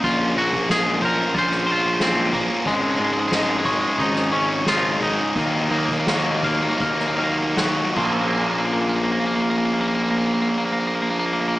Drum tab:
CC |x---x---x---x---|x---x---x---x---|x---x---x---x-x-|----------------|
SD |----o----o--o---|----o----o--o---|----o----o--o---|----------------|
BD |o--o--o-o-----o-|o-----o-o-----o-|o--o--o-o-----o-|----------------|